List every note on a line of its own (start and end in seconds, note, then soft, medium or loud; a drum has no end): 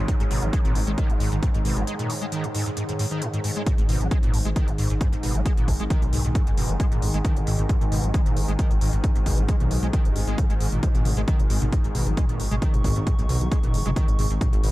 0.00 3.65 G#2 medium
0.00 3.65 D#3 medium
0.00 14.72 D#4 medium
0.00 14.72 G#4 medium
0.00 4.12 C#5 medium
0.08 0.15 G#2 medium
0.08 kick loud
0.08 closed hi-hat medium
0.20 0.27 G#1 medium
0.20 0.24 G#2 medium
0.20 closed hi-hat medium
0.31 0.39 G#1 loud
0.31 0.44 B2 medium
0.31 open hi-hat loud
0.42 0.50 G#1 medium
0.42 0.48 G#3 medium
0.42 closed hi-hat soft
0.53 0.60 G#3 medium
0.53 kick loud
0.53 closed hi-hat medium
0.65 0.72 G#1 medium
0.65 0.77 A#2 medium
0.65 closed hi-hat soft
0.75 0.84 G#1 medium
0.75 0.79 G#2 medium
0.75 open hi-hat loud
0.87 0.95 G#1 medium
0.87 0.91 G#3 loud
0.87 closed hi-hat medium
0.98 1.11 D#3 loud
0.98 kick loud
0.98 closed hi-hat medium
1.10 1.17 G#1 medium
1.10 1.13 F#2 medium
1.10 closed hi-hat soft
1.20 1.28 G#1 loud
1.20 1.30 G#2 medium
1.20 open hi-hat loud
1.32 1.39 G#1 medium
1.32 1.35 G#2 medium
1.32 closed hi-hat soft
1.43 1.49 G#2 medium
1.43 kick loud
1.43 closed hi-hat medium
1.54 1.62 G#1 medium
1.54 1.58 G#2 medium
1.54 closed hi-hat soft
1.65 1.73 G#1 medium
1.65 1.78 B2 medium
1.65 open hi-hat loud
1.77 1.84 G#1 medium
1.77 1.83 G#3 medium
1.77 closed hi-hat soft
1.87 1.94 G#3 medium
1.87 closed hi-hat loud
1.99 2.11 A#2 medium
1.99 closed hi-hat medium
2.10 2.14 G#2 medium
2.10 open hi-hat loud
2.22 2.25 G#3 loud
2.22 closed hi-hat medium
2.32 2.46 D#3 loud
2.32 closed hi-hat medium
2.44 2.47 F#2 medium
2.44 closed hi-hat soft
2.55 2.64 G#2 medium
2.55 open hi-hat loud
2.66 2.70 G#2 medium
2.66 closed hi-hat medium
2.77 2.83 G#2 medium
2.77 closed hi-hat medium
2.89 2.92 G#2 medium
2.89 closed hi-hat medium
2.99 3.06 G#2 loud
2.99 open hi-hat loud
3.11 3.23 D#3 loud
3.11 closed hi-hat soft
3.22 3.28 G#2 medium
3.22 closed hi-hat medium
3.34 3.39 G#2 medium
3.34 closed hi-hat medium
3.44 3.51 G#2 medium
3.44 open hi-hat loud
3.56 3.62 G#3 loud
3.56 closed hi-hat medium
3.66 3.73 G#2 medium
3.66 14.72 G#2 medium
3.66 14.72 D#3 medium
3.66 kick loud
3.66 closed hi-hat loud
3.78 3.86 G#1 medium
3.78 3.82 G#2 medium
3.78 closed hi-hat medium
3.89 3.97 G#1 loud
3.89 4.02 B2 medium
3.89 open hi-hat loud
4.01 4.08 G#1 medium
4.01 4.07 G#3 medium
4.01 closed hi-hat medium
4.10 4.18 G#3 medium
4.10 11.28 G#5 medium
4.10 kick loud
4.10 closed hi-hat medium
4.23 4.30 G#1 medium
4.23 4.35 A#2 medium
4.23 closed hi-hat medium
4.34 4.42 G#1 medium
4.34 4.38 G#2 medium
4.34 open hi-hat loud
4.45 4.53 G#1 medium
4.45 4.49 G#3 loud
4.45 closed hi-hat medium
4.56 4.69 D#3 loud
4.56 kick loud
4.56 closed hi-hat loud
4.68 4.75 G#1 medium
4.68 4.71 F#2 medium
4.68 closed hi-hat medium
4.78 4.87 G#1 loud
4.78 4.88 G#2 medium
4.78 open hi-hat loud
4.90 4.97 G#1 medium
4.90 4.94 G#2 medium
4.90 closed hi-hat medium
5.01 5.07 G#2 medium
5.01 kick loud
5.01 closed hi-hat medium
5.13 5.20 G#1 medium
5.13 5.16 G#2 medium
5.13 closed hi-hat medium
5.23 5.31 G#1 loud
5.23 5.36 B2 medium
5.23 open hi-hat loud
5.35 5.42 G#1 medium
5.35 5.41 G#3 medium
5.35 closed hi-hat medium
5.46 5.52 G#3 medium
5.46 kick loud
5.46 closed hi-hat loud
5.57 5.65 G#1 medium
5.57 5.69 A#2 medium
5.57 closed hi-hat medium
5.68 5.76 G#1 loud
5.68 5.72 G#2 medium
5.68 kick medium
5.68 open hi-hat loud
5.80 5.87 G#1 medium
5.80 5.83 G#3 loud
5.80 closed hi-hat medium
5.90 6.04 D#3 loud
5.90 kick loud
5.90 closed hi-hat medium
6.02 6.09 B1 medium
6.02 6.06 F#2 medium
6.02 closed hi-hat medium
6.13 6.21 B1 loud
6.13 6.23 G#2 medium
6.13 open hi-hat loud
6.25 6.32 B1 medium
6.25 6.28 G#2 medium
6.25 closed hi-hat medium
6.35 6.42 G#2 medium
6.35 kick loud
6.35 closed hi-hat loud
6.47 6.54 F#1 medium
6.47 6.50 G#2 medium
6.47 closed hi-hat medium
6.57 6.66 F#1 loud
6.57 6.71 B2 medium
6.57 open hi-hat loud
6.69 6.77 F#1 medium
6.69 6.75 G#3 medium
6.69 closed hi-hat medium
6.80 6.86 G#3 medium
6.80 kick loud
6.80 closed hi-hat medium
6.92 6.99 G#1 medium
6.92 7.04 A#2 medium
6.92 closed hi-hat medium
7.02 7.10 G#1 loud
7.02 7.06 G#2 medium
7.02 open hi-hat loud
7.14 7.21 G#1 medium
7.14 7.18 G#3 loud
7.14 closed hi-hat medium
7.25 7.38 D#3 loud
7.25 kick loud
7.25 closed hi-hat medium
7.36 7.44 G#1 medium
7.36 7.40 F#2 medium
7.36 closed hi-hat medium
7.47 7.55 G#1 loud
7.47 7.57 G#2 medium
7.47 open hi-hat loud
7.59 7.66 G#1 loud
7.59 7.62 G#2 medium
7.59 closed hi-hat medium
7.69 7.76 G#2 medium
7.69 kick loud
7.69 closed hi-hat medium
7.81 7.88 G#1 medium
7.81 7.85 G#2 medium
7.81 closed hi-hat medium
7.92 8.00 G#1 medium
7.92 8.05 B2 medium
7.92 open hi-hat loud
8.04 8.11 G#1 loud
8.04 8.09 G#3 medium
8.04 closed hi-hat medium
8.14 8.21 G#3 medium
8.14 kick loud
8.14 closed hi-hat loud
8.26 8.33 G#1 medium
8.26 8.38 A#2 medium
8.26 closed hi-hat medium
8.37 8.45 G#1 loud
8.37 8.41 G#2 medium
8.37 open hi-hat loud
8.48 8.56 G#1 medium
8.48 8.52 G#3 loud
8.48 closed hi-hat medium
8.59 8.72 D#3 loud
8.59 kick loud
8.59 closed hi-hat medium
8.71 8.78 G#1 medium
8.71 8.74 F#2 medium
8.71 closed hi-hat medium
8.81 8.90 G#1 loud
8.81 8.91 G#2 medium
8.81 open hi-hat loud
8.93 9.00 G#1 medium
8.93 8.97 G#2 medium
8.93 closed hi-hat medium
9.04 9.10 G#2 medium
9.04 kick loud
9.04 closed hi-hat medium
9.15 9.23 G#1 medium
9.15 9.19 G#2 medium
9.15 closed hi-hat medium
9.26 9.34 G#1 loud
9.26 9.39 B2 medium
9.26 kick medium
9.26 open hi-hat loud
9.38 9.45 G#1 loud
9.38 9.44 G#3 medium
9.38 closed hi-hat medium
9.48 9.55 G#3 medium
9.48 kick loud
9.48 closed hi-hat medium
9.60 9.68 B1 medium
9.60 9.72 A#2 medium
9.60 closed hi-hat soft
9.71 9.79 B1 medium
9.71 9.75 G#2 medium
9.71 open hi-hat loud
9.83 9.90 B1 medium
9.83 9.86 G#3 loud
9.83 closed hi-hat medium
9.93 10.07 D#3 loud
9.93 kick loud
9.93 closed hi-hat loud
10.05 10.12 F#1 medium
10.05 10.17 F#2 medium
10.05 closed hi-hat soft
10.16 10.24 G#1 loud
10.16 10.20 G#2 loud
10.16 open hi-hat loud
10.27 10.35 G#1 loud
10.27 10.40 G#3 loud
10.27 closed hi-hat soft
10.38 10.45 F#2 loud
10.38 kick loud
10.38 closed hi-hat loud
10.50 10.57 G#1 medium
10.50 10.53 G#3 medium
10.50 closed hi-hat medium
10.60 10.69 G#1 loud
10.60 10.67 G#2 medium
10.60 open hi-hat loud
10.72 10.80 G#1 medium
10.72 10.84 A#2 medium
10.72 closed hi-hat soft
10.83 10.89 G#3 medium
10.83 kick loud
10.83 closed hi-hat medium
10.83 mid tom medium
10.95 11.02 G#1 medium
10.95 11.07 A#2 medium
10.95 closed hi-hat medium
11.05 11.13 G#1 loud
11.05 11.09 G#2 medium
11.05 open hi-hat loud
11.05 mid tom loud
11.17 11.24 G#1 loud
11.17 11.21 G#3 loud
11.17 closed hi-hat soft
11.26 11.41 D#3 loud
11.26 14.72 C#6 medium
11.26 kick loud
11.26 closed hi-hat medium
11.39 11.47 G#1 medium
11.39 11.43 F#2 medium
11.39 closed hi-hat soft
11.39 mid tom medium
11.50 11.58 G#1 medium
11.50 11.60 G#2 medium
11.50 open hi-hat loud
11.62 11.69 G#1 loud
11.62 11.65 G#2 medium
11.62 closed hi-hat soft
11.62 mid tom loud
11.72 11.79 G#2 medium
11.72 kick loud
11.72 closed hi-hat medium
11.84 11.92 G#1 medium
11.84 11.88 G#2 medium
11.84 closed hi-hat soft
11.95 12.03 G#1 loud
11.95 12.08 B2 medium
11.95 open hi-hat loud
11.95 mid tom medium
12.07 12.14 G#1 medium
12.07 12.12 G#3 medium
12.07 closed hi-hat soft
12.17 12.24 G#3 medium
12.17 kick loud
12.17 closed hi-hat medium
12.17 mid tom loud
12.29 12.36 G#1 medium
12.29 12.41 A#2 medium
12.29 closed hi-hat medium
12.40 12.48 G#1 loud
12.40 12.44 G#2 medium
12.40 open hi-hat loud
12.51 12.59 G#1 loud
12.51 12.55 G#3 loud
12.51 closed hi-hat medium
12.51 mid tom medium
12.62 12.75 D#3 loud
12.62 kick loud
12.62 closed hi-hat medium
12.74 12.81 G#1 medium
12.74 12.77 F#2 medium
12.74 closed hi-hat medium
12.74 mid tom loud
12.84 12.92 G#1 loud
12.84 12.94 G#2 medium
12.84 kick medium
12.84 open hi-hat loud
12.96 13.04 G#1 loud
12.96 13.00 G#2 medium
12.96 closed hi-hat soft
13.07 13.13 G#2 medium
13.07 kick loud
13.07 closed hi-hat medium
13.07 mid tom medium
13.19 13.26 B1 medium
13.19 13.22 G#2 medium
13.19 closed hi-hat soft
13.29 13.37 B1 medium
13.29 13.43 B2 medium
13.29 open hi-hat loud
13.29 mid tom loud
13.41 13.48 B1 medium
13.41 13.47 G#3 medium
13.41 closed hi-hat soft
13.52 13.58 G#3 medium
13.52 kick loud
13.52 closed hi-hat medium
13.63 13.71 F#1 medium
13.63 13.76 A#2 medium
13.63 closed hi-hat soft
13.63 mid tom medium
13.74 13.82 F#1 loud
13.74 13.78 G#2 medium
13.74 open hi-hat loud
13.86 13.93 F#1 medium
13.86 13.89 G#3 loud
13.86 closed hi-hat soft
13.86 mid tom medium
13.96 14.10 D#3 loud
13.96 kick loud
13.96 closed hi-hat medium
14.08 14.15 G#1 medium
14.08 14.12 F#2 medium
14.08 closed hi-hat medium
14.19 14.27 G#1 loud
14.19 14.28 G#2 medium
14.19 open hi-hat loud
14.19 mid tom medium
14.30 14.38 G#1 medium
14.30 14.34 G#2 medium
14.30 closed hi-hat soft
14.41 14.48 G#2 medium
14.41 kick loud
14.41 closed hi-hat medium
14.41 mid tom loud
14.53 14.60 G#1 medium
14.53 14.56 G#2 medium
14.53 closed hi-hat medium
14.63 14.72 G#1 loud
14.63 14.72 B2 medium
14.63 open hi-hat loud